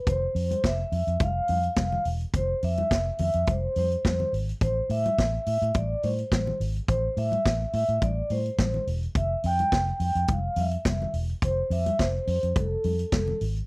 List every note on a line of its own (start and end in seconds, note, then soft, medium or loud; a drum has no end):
0.07 0.26 F1 medium
0.07 0.66 C5 loud
0.07 kick loud
0.07 closed hi-hat medium
0.07 muted conga soft
0.07 low conga medium
0.35 0.54 F2 loud
0.35 open hi-hat medium
0.51 closed hi-hat medium
0.51 high conga medium
0.64 0.82 F1 loud
0.64 1.23 E5 loud
0.64 kick loud
0.64 snare medium
0.64 closed hi-hat medium
0.92 1.02 F2 medium
0.92 open hi-hat medium
0.92 muted conga soft
1.07 1.16 F2 medium
1.07 closed hi-hat soft
1.20 1.39 F1 medium
1.20 2.03 F5 loud
1.20 kick loud
1.20 closed hi-hat medium
1.20 muted conga soft
1.20 high conga medium
1.48 1.68 F2 medium
1.48 open hi-hat medium
1.48 high conga medium
1.63 closed hi-hat soft
1.76 1.96 F1 medium
1.76 kick loud
1.76 snare loud
1.76 closed hi-hat medium
1.76 high conga medium
1.92 high conga medium
1.92 low conga medium
2.05 2.24 E1 medium
2.05 open hi-hat medium
2.21 closed hi-hat soft
2.34 2.52 F1 medium
2.34 2.64 C5 medium
2.34 kick loud
2.34 closed hi-hat medium
2.34 muted conga soft
2.34 low conga medium
2.62 2.81 F2 medium
2.62 3.21 E5 loud
2.62 open hi-hat medium
2.62 muted conga soft
2.77 closed hi-hat medium
2.77 high conga medium
2.91 3.09 F1 loud
2.91 kick loud
2.91 snare loud
2.91 closed hi-hat medium
2.91 muted conga soft
3.18 3.29 F2 medium
3.18 open hi-hat medium
3.18 muted conga soft
3.18 low conga medium
3.22 3.50 E5 loud
3.33 3.43 F2 medium
3.33 closed hi-hat soft
3.47 3.66 F1 medium
3.47 3.78 C5 medium
3.47 kick loud
3.47 closed hi-hat medium
3.47 muted conga soft
3.47 high conga medium
3.76 3.95 F2 medium
3.76 4.30 C5 medium
3.76 open hi-hat medium
3.76 muted conga soft
3.76 high conga medium
3.91 closed hi-hat soft
4.05 4.23 F2 medium
4.05 kick medium
4.05 snare loud
4.05 closed hi-hat medium
4.05 muted conga soft
4.05 high conga medium
4.20 high conga medium
4.20 low conga medium
4.33 4.51 G#1 medium
4.33 open hi-hat medium
4.33 muted conga soft
4.49 closed hi-hat soft
4.61 4.80 A1 medium
4.61 4.91 C5 medium
4.61 kick loud
4.61 closed hi-hat medium
4.61 muted conga soft
4.61 low conga medium
4.90 5.08 A2 loud
4.90 5.46 E5 loud
4.90 open hi-hat medium
4.90 muted conga soft
5.05 closed hi-hat medium
5.05 high conga medium
5.18 5.37 A1 loud
5.18 kick loud
5.18 snare medium
5.18 closed hi-hat medium
5.18 muted conga soft
5.46 5.57 A2 medium
5.46 5.76 E5 loud
5.46 open hi-hat medium
5.62 5.70 A2 medium
5.62 closed hi-hat soft
5.74 5.94 A1 medium
5.74 6.05 D5 loud
5.74 kick loud
5.74 closed hi-hat medium
5.74 high conga medium
6.03 6.22 A2 medium
6.03 6.56 C5 medium
6.03 open hi-hat medium
6.03 muted conga soft
6.03 high conga medium
6.18 closed hi-hat soft
6.32 6.50 A1 medium
6.32 kick loud
6.32 snare loud
6.32 closed hi-hat medium
6.32 muted conga soft
6.32 high conga medium
6.47 high conga medium
6.47 low conga medium
6.60 6.79 G#1 medium
6.60 open hi-hat medium
6.60 muted conga soft
6.76 closed hi-hat soft
6.88 7.07 A1 loud
6.88 7.18 C5 loud
6.88 kick loud
6.88 closed hi-hat medium
6.88 muted conga soft
6.88 low conga medium
7.17 7.35 A2 loud
7.17 7.74 E5 loud
7.17 open hi-hat medium
7.17 muted conga soft
7.32 closed hi-hat medium
7.32 high conga medium
7.46 7.64 A1 loud
7.46 kick loud
7.46 snare loud
7.46 closed hi-hat medium
7.73 7.84 A2 loud
7.73 8.03 E5 loud
7.73 open hi-hat medium
7.73 muted conga soft
7.89 7.97 A2 medium
7.89 closed hi-hat soft
8.01 8.20 A1 loud
8.01 8.29 D5 medium
8.01 kick loud
8.01 closed hi-hat medium
8.01 muted conga soft
8.01 high conga medium
8.30 8.49 A2 loud
8.30 8.84 C5 medium
8.30 open hi-hat medium
8.30 muted conga soft
8.30 high conga medium
8.46 closed hi-hat soft
8.59 8.77 A1 medium
8.59 kick loud
8.59 snare loud
8.59 closed hi-hat medium
8.59 muted conga soft
8.59 high conga medium
8.74 high conga medium
8.74 low conga medium
8.87 9.06 E1 medium
8.87 open hi-hat medium
8.87 muted conga soft
9.03 closed hi-hat soft
9.15 9.34 F1 loud
9.15 9.45 E5 medium
9.15 kick loud
9.15 closed hi-hat medium
9.15 muted conga soft
9.15 low conga medium
9.43 9.63 F2 loud
9.43 9.98 G5 loud
9.43 open hi-hat medium
9.59 closed hi-hat medium
9.59 high conga medium
9.72 9.91 F1 loud
9.72 kick loud
9.72 snare medium
9.72 closed hi-hat medium
9.72 muted conga soft
10.00 10.10 F2 medium
10.00 10.31 G5 medium
10.00 open hi-hat medium
10.00 muted conga soft
10.15 10.24 F2 medium
10.15 closed hi-hat soft
10.28 10.47 F1 medium
10.28 kick loud
10.28 closed hi-hat medium
10.28 high conga medium
10.32 10.60 F5 medium
10.56 10.75 F2 medium
10.56 11.12 E5 medium
10.56 open hi-hat medium
10.56 muted conga soft
10.56 high conga medium
10.71 closed hi-hat soft
10.85 11.04 F1 medium
10.85 kick loud
10.85 snare loud
10.85 closed hi-hat medium
10.85 muted conga soft
10.85 high conga medium
11.02 high conga medium
11.02 low conga medium
11.14 11.32 E1 loud
11.14 open hi-hat medium
11.29 closed hi-hat soft
11.42 11.61 F1 medium
11.42 11.73 C5 loud
11.42 kick loud
11.42 closed hi-hat medium
11.42 low conga medium
11.70 11.89 F2 loud
11.70 12.01 E5 loud
11.70 open hi-hat medium
11.70 muted conga soft
11.86 closed hi-hat medium
11.86 high conga medium
11.99 12.18 F1 medium
11.99 12.58 C5 loud
11.99 kick loud
11.99 snare medium
11.99 closed hi-hat medium
11.99 muted conga soft
12.27 12.37 F2 loud
12.27 open hi-hat medium
12.27 muted conga soft
12.43 12.52 F2 medium
12.43 closed hi-hat soft
12.56 12.75 F1 loud
12.56 13.38 A4 medium
12.56 kick loud
12.56 closed hi-hat medium
12.56 high conga medium
12.84 13.03 F2 medium
12.84 open hi-hat medium
12.84 muted conga soft
12.84 high conga medium
12.99 closed hi-hat soft
13.12 13.31 F1 medium
13.12 kick loud
13.12 snare loud
13.12 closed hi-hat medium
13.12 muted conga soft
13.12 high conga medium
13.28 high conga medium
13.28 low conga medium
13.41 13.60 G#1 medium
13.41 open hi-hat medium
13.41 muted conga soft
13.56 closed hi-hat soft